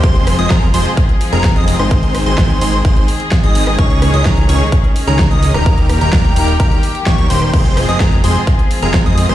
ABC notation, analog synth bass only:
X:1
M:4/4
L:1/16
Q:1/4=128
K:Fm
V:1 name="Analog synth bass" clef=bass
F,,,3 F,,, z2 F,,, z4 F,,,2 F,,,2 A,,,- | A,,,3 A,,, z2 A,,,2 z4 z A,,,3 | D,,3 D,, D,,2 D,, z4 D,,2 D,,2 E,,,- | E,,,3 E,,, z2 E,,,2 E,,,2 z2 E,,, E,, E,,,2 |
F,,,3 F,,, z2 F,,, z4 F,,,2 F,,2 A,,, |]